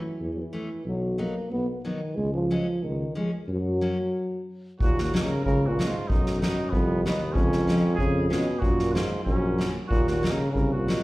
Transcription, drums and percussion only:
4.80 kick medium
4.98 snare medium
5.15 snare medium
5.46 kick medium
5.79 snare medium
6.10 kick medium
6.26 snare medium
6.42 snare medium
6.73 kick medium
7.05 snare medium
7.35 kick medium
7.52 snare medium
7.68 snare medium
7.98 kick medium
8.31 snare medium
8.62 kick medium
8.79 snare soft
8.96 snare medium
9.26 kick medium
9.60 snare medium
9.91 kick medium
10.07 snare soft
10.24 snare medium
10.55 kick medium
10.89 snare medium

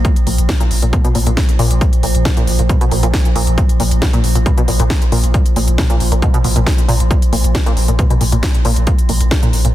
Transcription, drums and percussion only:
0.05 kick loud
0.05 closed hi-hat medium
0.16 closed hi-hat medium
0.27 open hi-hat loud
0.38 closed hi-hat medium
0.49 kick loud
0.49 snare loud
0.49 closed hi-hat medium
0.60 closed hi-hat medium
0.71 open hi-hat loud
0.82 closed hi-hat medium
0.93 kick loud
0.93 closed hi-hat medium
1.04 closed hi-hat medium
1.15 open hi-hat loud
1.27 closed hi-hat medium
1.37 kick loud
1.37 snare loud
1.37 closed hi-hat medium
1.49 closed hi-hat medium
1.59 open hi-hat loud
1.71 closed hi-hat medium
1.81 kick loud
1.81 closed hi-hat medium
1.93 closed hi-hat medium
2.03 open hi-hat loud
2.15 closed hi-hat medium
2.25 kick loud
2.25 snare loud
2.25 closed hi-hat medium
2.37 closed hi-hat medium
2.47 open hi-hat loud
2.59 closed hi-hat medium
2.69 kick loud
2.69 closed hi-hat medium
2.81 closed hi-hat medium
2.91 open hi-hat loud
3.03 closed hi-hat medium
3.14 kick loud
3.14 snare loud
3.14 closed hi-hat medium
3.25 closed hi-hat medium
3.36 open hi-hat loud
3.47 closed hi-hat medium
3.58 kick loud
3.58 closed hi-hat medium
3.69 closed hi-hat medium
3.80 open hi-hat loud
3.91 closed hi-hat medium
4.02 kick loud
4.02 snare loud
4.02 closed hi-hat medium
4.13 closed hi-hat medium
4.24 open hi-hat loud
4.35 closed hi-hat medium
4.46 kick loud
4.46 closed hi-hat medium
4.58 closed hi-hat medium
4.68 open hi-hat loud
4.80 closed hi-hat medium
4.90 kick loud
4.90 snare loud
4.90 closed hi-hat medium
5.02 closed hi-hat medium
5.12 open hi-hat loud
5.24 closed hi-hat medium
5.34 kick loud
5.34 closed hi-hat medium
5.46 closed hi-hat medium
5.56 open hi-hat loud
5.68 closed hi-hat medium
5.78 kick loud
5.78 snare loud
5.78 closed hi-hat medium
5.90 closed hi-hat medium
6.00 open hi-hat loud
6.12 closed hi-hat medium
6.22 kick loud
6.22 closed hi-hat medium
6.34 closed hi-hat medium
6.44 open hi-hat loud
6.56 closed hi-hat medium
6.66 kick loud
6.66 snare loud
6.66 closed hi-hat medium
6.78 closed hi-hat medium
6.89 open hi-hat loud
7.00 closed hi-hat medium
7.11 kick loud
7.11 closed hi-hat medium
7.22 closed hi-hat medium
7.33 open hi-hat loud
7.44 closed hi-hat medium
7.55 kick loud
7.55 snare loud
7.55 closed hi-hat medium
7.66 closed hi-hat medium
7.77 open hi-hat loud
7.88 closed hi-hat medium
7.99 kick loud
7.99 closed hi-hat medium
8.10 closed hi-hat medium
8.21 open hi-hat loud
8.32 closed hi-hat medium
8.43 kick loud
8.43 snare loud
8.43 closed hi-hat medium
8.54 closed hi-hat medium
8.65 open hi-hat loud
8.76 closed hi-hat medium
8.87 kick loud
8.87 closed hi-hat medium
8.99 closed hi-hat medium
9.09 open hi-hat loud
9.21 closed hi-hat medium
9.31 kick loud
9.31 snare loud
9.31 closed hi-hat medium
9.43 closed hi-hat medium
9.53 open hi-hat loud
9.65 closed hi-hat medium

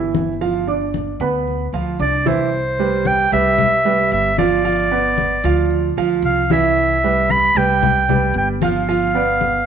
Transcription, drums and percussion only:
0.14 high conga medium
0.41 high conga soft
0.68 high conga soft
0.94 high conga medium
1.20 high conga soft
1.47 high conga soft
1.74 high conga soft
2.00 high conga soft
2.27 high conga medium
2.53 high conga soft
2.79 high conga soft
3.05 high conga medium
3.32 high conga soft
3.58 high conga soft
3.58 low conga medium
3.85 high conga soft
4.12 high conga soft
4.38 high conga medium
4.65 high conga soft
4.92 high conga soft
5.18 high conga medium
5.45 high conga soft
5.71 high conga soft
5.97 high conga soft
6.24 high conga soft
6.50 high conga medium
6.77 high conga soft
7.04 high conga soft
7.30 high conga medium
7.56 high conga soft
7.83 high conga soft
7.83 low conga medium
8.09 high conga soft
8.09 low conga medium
8.36 high conga soft
8.62 high conga medium
8.89 high conga soft
9.15 high conga soft
9.41 high conga medium

